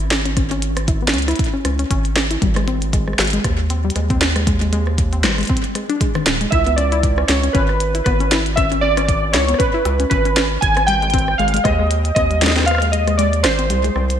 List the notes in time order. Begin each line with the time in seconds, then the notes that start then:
Already playing: G#1
0.11 C#4, snare
0.25 C#4, closed hi-hat
0.37 C#4, kick, cross-stick, closed hi-hat
0.51 C#4, closed hi-hat
0.62 closed hi-hat
0.77 cross-stick, closed hi-hat
0.88 E4, kick, closed hi-hat
1.02 B3
1.08 snare
1.14 C#2 C#4, closed hi-hat
1.18 closed hi-hat
1.22 closed hi-hat
1.28 E4, cross-stick, closed hi-hat
1.31 closed hi-hat
1.36 kick, closed hi-hat
1.39 closed hi-hat
1.44 closed hi-hat
1.54 C#4
1.65 C#2 C#4, cross-stick, closed hi-hat
1.79 C#4, closed hi-hat
1.91 G#1 C#4, kick, closed hi-hat
2.05 closed hi-hat
2.16 cross-stick, snare
2.31 E4, closed hi-hat
2.42 G#1 G3, kick, closed hi-hat
2.56 G#3, cross-stick, closed hi-hat
2.68 C4, closed hi-hat
2.82 closed hi-hat
2.93 G#3, kick, closed hi-hat
3.08 G#3, cross-stick
3.13 cross-stick
3.19 G#1 G#3, cross-stick, snare, closed hi-hat
3.22 closed hi-hat
3.25 cross-stick, closed hi-hat
3.27 closed hi-hat
3.30 closed hi-hat
3.33 G#3, closed hi-hat
3.44 D#2, kick, cross-stick, closed hi-hat
3.70 C4, closed hi-hat
3.85 G3
3.90 closed hi-hat
3.96 D#2 G#3, cross-stick, closed hi-hat
4.10 C4, kick, closed hi-hat
4.21 snare
4.36 G#3, cross-stick, closed hi-hat
4.47 G#3, kick, closed hi-hat
4.61 G#3, closed hi-hat
4.73 G#3, closed hi-hat
4.87 cross-stick
4.98 kick, closed hi-hat
5.13 C4, closed hi-hat
5.24 G#1 G3, cross-stick, snare, closed hi-hat
5.28 cross-stick
5.31 cross-stick
5.35 cross-stick
5.38 G#3, cross-stick, closed hi-hat
5.41 cross-stick, closed hi-hat
5.43 cross-stick, closed hi-hat
5.45 cross-stick, closed hi-hat
5.47 C4, kick, closed hi-hat
5.57 closed hi-hat
5.64 closed hi-hat
5.75 G#3, cross-stick, closed hi-hat
5.90 D4, closed hi-hat
6.01 G#3, kick, closed hi-hat
6.15 D#3, cross-stick, closed hi-hat
6.26 D#1, snare, closed hi-hat
6.41 G#3, closed hi-hat
6.51 C#2 E4 E5, kick, closed hi-hat
6.67 B3, closed hi-hat
6.76 C#4 D5, cross-stick, closed hi-hat
6.92 E4, closed hi-hat
7.03 kick, closed hi-hat
7.18 C#4, cross-stick
7.28 C#2 C#4 C#5, snare, closed hi-hat
7.43 C#4, closed hi-hat
7.53 G#1 C#4 B4, kick, closed hi-hat
7.69 cross-stick
7.80 closed hi-hat
7.95 E4, closed hi-hat
8.04 G#1 B3 B4, kick, cross-stick, closed hi-hat
8.20 C#4, closed hi-hat
8.32 E4, snare, closed hi-hat
8.46 closed hi-hat
8.56 C#4 E5, kick, cross-stick, closed hi-hat
8.72 C#4, closed hi-hat
8.81 C#4 D5
8.97 C#4, cross-stick, closed hi-hat
9.09 kick, closed hi-hat
9.33 C#2 E4 C#5, snare, closed hi-hat
9.49 B3, closed hi-hat
9.54 cross-stick
9.58 C#4 B4, kick, closed hi-hat
9.74 E4
9.85 C#2, cross-stick, closed hi-hat
10.00 C#4, closed hi-hat
10.10 G#1 C#4 B4, kick, closed hi-hat
10.25 C#4, closed hi-hat
10.37 C#4, cross-stick, snare, closed hi-hat
10.61 G#1 G#5, kick, closed hi-hat
10.77 C4, cross-stick, closed hi-hat
10.87 G3 G5, closed hi-hat
11.02 G#3, closed hi-hat
11.10 kick, closed hi-hat
11.14 C4, closed hi-hat
11.19 closed hi-hat
11.28 cross-stick
11.38 G#1 G#3 F5, closed hi-hat
11.48 closed hi-hat
11.54 G#3, closed hi-hat
11.57 closed hi-hat
11.64 D#2 G#3 D#5, kick, cross-stick, closed hi-hat
11.79 G#3
11.91 closed hi-hat
12.05 closed hi-hat
12.15 D#2 C4 D#5, kick, cross-stick, closed hi-hat
12.31 G3, closed hi-hat
12.42 G#3, snare, closed hi-hat
12.47 snare
12.51 snare
12.56 C4, cross-stick, snare, closed hi-hat
12.59 cross-stick, snare
12.62 cross-stick, snare
12.65 F5, cross-stick
12.68 cross-stick, closed hi-hat
12.71 cross-stick
12.75 cross-stick
12.78 G#3, cross-stick, closed hi-hat
12.92 G#3 D#5, closed hi-hat
13.07 G#3, cross-stick, closed hi-hat
13.18 G#3 D5, closed hi-hat
13.33 closed hi-hat
13.43 G#1 C5, cross-stick, snare, closed hi-hat
13.59 C4, closed hi-hat
13.70 C2 G3, closed hi-hat
13.84 G#3, closed hi-hat
13.96 C2 C4, cross-stick
14.10 closed hi-hat